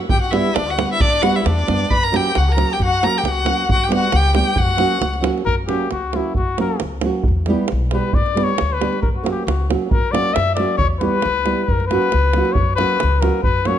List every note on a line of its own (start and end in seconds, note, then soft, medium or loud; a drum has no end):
0.09 0.37 G2 medium
0.09 0.21 G4 medium
0.09 0.21 G5 medium
0.09 davul low loud
0.21 0.35 F#4 medium
0.21 0.32 F#5 medium
0.31 0.50 G3 medium
0.31 0.50 B3 medium
0.31 0.50 D4 medium
0.31 0.57 E4 medium
0.31 0.51 G4 medium
0.31 0.56 E5 medium
0.31 davul high medium
0.54 0.83 D2 medium
0.54 0.69 D4 medium
0.54 0.72 D5 loud
0.54 davul high medium
0.68 0.90 F#4 medium
0.68 0.91 F#5 medium
0.77 0.95 G3 medium
0.77 0.95 B3 soft
0.77 0.95 D4 medium
0.77 0.96 G4 medium
0.77 davul high medium
0.91 1.03 E4 medium
0.91 1.02 E5 loud
1.00 1.27 G2 medium
1.00 1.27 D4 medium
1.00 1.24 D5 loud
1.00 davul low loud
1.22 1.40 G3 medium
1.22 1.40 B3 medium
1.22 1.40 D4 medium
1.22 1.38 F#4 medium
1.22 1.40 G4 medium
1.22 1.37 F#5 loud
1.22 davul high medium
1.36 1.50 E4 medium
1.36 1.46 E5 medium
1.45 1.65 E2 medium
1.45 1.93 D4 medium
1.45 1.92 D5 medium
1.45 davul high medium
1.59 davul high soft
1.67 1.88 F#2 medium
1.67 1.85 G3 medium
1.67 1.85 B3 medium
1.67 1.85 D4 soft
1.67 1.85 G4 medium
1.67 davul high medium
1.90 2.17 F#2 medium
1.90 2.07 B4 loud
1.90 2.05 B5 loud
1.90 davul low medium
2.03 2.16 A#4 medium
2.03 2.18 A#5 loud
2.12 2.29 F#3 medium
2.12 2.30 A#3 medium
2.12 2.30 C#4 medium
2.12 2.30 F#4 medium
2.12 2.39 G4 medium
2.12 davul high medium
2.16 2.39 G5 loud
2.35 2.62 C#2 loud
2.35 2.51 F#4 medium
2.35 2.54 F#5 medium
2.35 davul high medium
2.50 2.73 A#4 medium
2.50 2.75 A#5 loud
2.56 2.74 F#3 medium
2.56 2.74 A#3 soft
2.56 2.74 C#4 medium
2.56 2.75 F#4 medium
2.56 davul high medium
2.72 2.80 G4 medium
2.72 2.81 G5 loud
2.79 3.06 F#2 medium
2.79 davul low medium
2.84 3.09 F#4 medium
2.84 3.05 F#5 loud
3.03 3.19 F#3 medium
3.03 3.20 A#3 medium
3.03 3.20 C#4 medium
3.03 3.20 F#4 medium
3.03 3.19 A#5 loud
3.03 davul high medium
3.07 3.20 A#4 medium
3.18 3.33 G4 medium
3.18 3.30 G5 medium
3.24 3.50 C#2 medium
3.24 davul high medium
3.28 3.72 F#4 medium
3.28 3.71 F#5 medium
3.44 3.63 F#3 medium
3.44 3.63 A#3 medium
3.44 3.63 C#4 medium
3.44 3.64 F#4 medium
3.44 davul high medium
3.69 3.96 G2 medium
3.69 3.85 F#5 loud
3.69 davul low loud
3.73 3.88 F#4 medium
3.84 3.94 G4 medium
3.84 3.92 G5 medium
3.89 4.07 G3 medium
3.89 4.08 B3 medium
3.89 4.07 D4 medium
3.89 4.08 G4 medium
3.89 davul high medium
3.94 4.19 F#4 medium
3.94 4.17 F#5 loud
4.12 4.40 C#2 loud
4.12 4.35 G5 loud
4.12 davul high medium
4.17 4.37 G4 medium
4.35 4.52 G3 medium
4.35 4.53 B3 medium
4.35 4.53 D4 soft
4.35 4.53 G4 medium
4.35 4.59 G5 medium
4.35 davul high medium
4.39 4.64 G4 medium
4.56 4.84 F#2 medium
4.56 5.25 F#5 loud
4.56 davul low loud
4.63 5.27 F#4 medium
4.69 davul high soft
4.77 4.96 F#3 medium
4.77 4.97 A#3 medium
4.77 4.97 C#4 medium
4.77 4.97 F#4 medium
4.77 davul high medium
4.91 davul high soft
5.01 5.28 C#2 medium
5.01 davul high medium
5.13 davul high soft
5.21 5.41 F#3 medium
5.21 5.41 A#3 medium
5.21 5.41 C#4 medium
5.21 5.41 F#4 medium
5.21 davul high medium
5.38 davul high soft
5.45 5.73 F#2 medium
5.45 5.56 A#4 loud
5.45 davul low medium
5.67 5.86 F#3 medium
5.67 5.86 A#3 medium
5.67 5.86 C#4 medium
5.67 5.87 F#4 medium
5.67 5.89 G4 medium
5.67 davul high medium
5.91 6.19 C#2 medium
5.91 6.17 F#4 medium
5.91 davul high medium
6.13 6.32 F#3 soft
6.13 6.31 A#3 soft
6.13 6.32 C#4 soft
6.13 6.36 E4 medium
6.13 6.32 F#4 medium
6.13 davul high medium
6.35 6.64 F#2 medium
6.35 6.57 F#4 medium
6.35 davul low medium
6.58 6.76 F#3 medium
6.58 6.76 A#3 medium
6.58 6.76 C#4 medium
6.58 6.76 F#4 medium
6.58 6.81 A#4 medium
6.58 davul high medium
6.80 7.08 C#2 medium
6.80 davul high medium
7.01 7.20 F#3 medium
7.01 7.21 A#3 medium
7.01 7.21 C#4 medium
7.01 davul high medium
7.06 7.22 F#4 medium
7.24 davul low medium
7.28 7.54 E2 medium
7.46 7.65 G3 medium
7.46 7.66 B3 medium
7.46 7.65 E4 medium
7.46 7.66 G4 medium
7.46 davul high medium
7.68 7.98 B1 medium
7.68 davul high medium
7.91 8.09 G3 medium
7.91 8.10 B3 medium
7.91 8.10 E4 soft
7.91 8.11 G4 medium
7.91 8.16 B4 medium
7.91 davul high medium
8.13 8.42 G2 medium
8.13 8.45 D5 loud
8.13 davul low loud
8.26 davul high soft
8.35 8.53 G3 medium
8.35 8.54 B3 medium
8.35 8.54 D4 medium
8.35 8.55 G4 medium
8.35 davul high medium
8.44 8.75 C#5 loud
8.49 davul high soft
8.58 8.87 D2 medium
8.58 davul high medium
8.73 9.02 B4 medium
8.81 8.98 G3 medium
8.81 8.98 B3 soft
8.81 8.98 D4 medium
8.81 8.99 G4 medium
8.81 davul high medium
8.93 davul high soft
9.02 9.29 F#2 medium
9.02 9.09 A#4 medium
9.02 davul low medium
9.16 9.30 F#4 medium
9.23 9.42 F#3 medium
9.23 9.42 A#3 medium
9.23 9.42 C#4 medium
9.23 9.43 F#4 medium
9.23 davul high medium
9.31 9.45 G4 medium
9.46 9.74 C#2 medium
9.46 9.67 F#4 medium
9.46 davul high medium
9.70 9.87 F#3 medium
9.70 9.87 A#3 medium
9.70 9.87 C#4 medium
9.70 9.88 F#4 medium
9.70 davul high medium
9.91 10.18 F#2 medium
9.91 10.13 A#4 medium
9.91 davul low loud
10.12 10.31 F#3 medium
10.12 10.31 A#3 medium
10.12 10.31 C#4 medium
10.12 10.32 F#4 medium
10.12 10.36 D5 loud
10.12 davul high medium
10.34 10.63 F#2 medium
10.34 10.54 E5 loud
10.34 davul high medium
10.55 10.75 F#3 medium
10.55 10.76 A#3 medium
10.55 10.77 D5 medium
10.55 davul high medium
10.59 10.76 C#4 medium
10.59 10.76 F#4 medium
10.77 11.08 E2 medium
10.77 10.88 C#5 loud
10.77 davul low loud
11.00 11.19 G3 medium
11.00 11.19 B3 medium
11.00 11.20 E4 medium
11.00 11.20 G4 medium
11.00 11.65 B4 loud
11.00 davul high medium
11.22 11.52 C#2 medium
11.22 davul high medium
11.45 11.63 G3 medium
11.45 11.64 B3 medium
11.45 11.64 E4 medium
11.45 11.64 G4 medium
11.45 davul high medium
11.64 11.86 A#4 medium
11.68 11.96 F#2 medium
11.68 davul low medium
11.80 davul high soft
11.87 12.08 F#3 medium
11.87 12.08 A#3 medium
11.87 12.55 B4 medium
11.91 12.09 C#4 medium
11.91 12.09 F#4 medium
11.91 davul high medium
12.02 davul high soft
12.12 12.40 C#2 medium
12.12 davul high medium
12.33 12.53 F#3 medium
12.33 12.53 A#3 medium
12.33 12.53 C#4 soft
12.33 davul high medium
12.38 12.54 F#4 medium
12.45 davul high soft
12.53 12.75 C#5 medium
12.53 davul low loud
12.58 12.84 F#2 medium
12.76 12.96 F#3 medium
12.76 12.97 A#3 medium
12.76 13.22 B4 loud
12.76 davul high medium
12.80 12.97 C#4 medium
12.80 12.97 F#4 medium
13.00 13.29 C#2 loud
13.00 davul high medium
13.21 13.39 F#3 medium
13.21 13.40 A#3 medium
13.21 13.40 C#4 medium
13.21 13.41 F#4 medium
13.21 13.42 A#4 medium
13.21 davul high medium
13.43 13.72 F#2 medium
13.43 13.68 B4 loud
13.43 davul low medium
13.65 13.79 F#3 medium
13.65 13.79 A#3 medium
13.65 13.79 C#4 medium
13.65 13.79 F#4 medium
13.65 13.79 C#5 medium
13.65 davul high medium